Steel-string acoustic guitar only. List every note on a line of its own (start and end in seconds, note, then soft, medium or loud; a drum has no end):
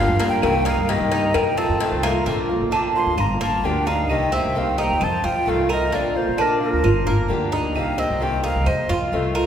0.00 0.19 D3 medium
0.00 0.19 F3 medium
0.00 0.19 A#3 medium
0.00 0.19 D4 medium
0.00 0.18 G4 medium
0.19 0.41 A#3 soft
0.19 0.42 D4 medium
0.19 0.41 G4 medium
0.42 0.64 C3 medium
0.42 0.65 D#3 medium
0.42 0.65 A#3 medium
0.42 0.65 C4 medium
0.42 0.64 G4 medium
0.65 0.88 A#3 soft
0.65 0.88 C4 soft
0.65 0.87 G4 soft
0.88 1.32 C3 medium
0.88 1.33 D#3 medium
0.88 1.34 A#3 medium
0.88 1.33 C4 medium
0.88 1.34 G4 medium
1.34 muted steel-string acoustic guitar stroke medium
1.57 1.80 A3 soft
1.57 1.80 C4 soft
1.57 1.79 F4 soft
1.80 2.02 C3 medium
1.80 2.02 D#3 medium
1.80 2.03 A3 medium
1.80 2.03 C4 medium
1.80 2.02 F4 medium
2.03 2.26 A3 soft
2.03 2.26 C4 soft
2.03 2.25 F4 medium
2.26 2.48 D3 medium
2.26 2.48 A#3 medium
2.26 2.49 C4 medium
2.26 2.48 F4 medium
2.49 2.70 A#3 soft
2.49 2.71 C4 soft
2.49 2.71 F4 soft
2.71 2.94 D3 medium
2.71 2.94 A#3 medium
2.71 2.94 C4 medium
2.71 2.93 F4 medium
2.94 3.16 A#3 soft
2.94 3.17 C4 soft
2.94 3.17 F4 soft
3.17 muted steel-string acoustic guitar stroke medium
3.63 3.86 D3 medium
3.63 3.86 F3 medium
3.63 3.86 A#3 medium
3.63 3.86 D4 medium
3.63 3.85 G4 medium
3.86 4.09 A#3 soft
3.86 4.09 D4 soft
3.86 4.08 G4 medium
4.09 4.31 C3 medium
4.09 4.32 D#3 medium
4.09 4.32 A#3 medium
4.09 4.32 C4 medium
4.09 4.31 G4 medium
4.32 4.55 A#3 soft
4.32 4.55 C4 soft
4.32 4.54 G4 soft
4.55 4.77 C3 medium
4.55 4.77 D#3 medium
4.55 4.78 A#3 medium
4.55 4.77 C4 medium
4.55 4.76 G4 medium
4.77 5.01 A#3 soft
4.77 5.00 C4 soft
4.77 5.00 G4 medium
5.01 muted steel-string acoustic guitar stroke medium
5.46 5.68 C3 medium
5.46 5.69 D#3 medium
5.46 5.69 A3 medium
5.46 5.69 C4 medium
5.46 5.68 F4 medium
5.69 5.92 A3 soft
5.69 5.92 C4 medium
5.69 5.92 F4 soft
5.92 6.14 D3 medium
5.92 6.15 A#3 medium
5.92 6.15 C4 medium
5.92 6.14 F4 medium
6.15 6.37 A#3 soft
6.15 6.38 C4 soft
6.15 6.37 F4 medium
6.37 6.60 D3 medium
6.37 6.60 A#3 medium
6.37 6.60 C4 medium
6.37 6.59 F4 medium
6.60 6.82 A#3 soft
6.60 6.83 C4 soft
6.60 6.83 F4 medium
6.83 muted steel-string acoustic guitar stroke medium
7.28 7.51 D3 medium
7.28 7.51 F3 medium
7.28 7.52 A#3 medium
7.28 7.51 D4 medium
7.28 7.50 G4 medium
7.51 7.74 A#3 soft
7.51 7.75 D4 medium
7.51 7.74 G4 medium
7.75 7.97 C3 medium
7.75 7.97 D#3 medium
7.75 7.97 A#3 medium
7.75 7.97 C4 medium
7.75 7.96 G4 medium
7.97 8.20 A#3 soft
7.97 8.20 C4 soft
7.97 8.20 G4 soft
8.20 8.42 C3 medium
8.20 8.43 D#3 medium
8.20 8.43 A#3 medium
8.20 8.43 C4 medium
8.20 8.42 G4 medium
8.43 8.66 A#3 soft
8.43 8.66 C4 soft
8.43 8.65 G4 medium
8.67 muted steel-string acoustic guitar stroke medium
9.12 9.34 C3 medium
9.12 9.34 D#3 medium
9.12 9.35 A3 medium
9.12 9.34 C4 medium
9.12 9.33 F4 medium
9.34 9.46 A3 soft
9.34 9.46 C4 soft
9.34 9.46 F4 medium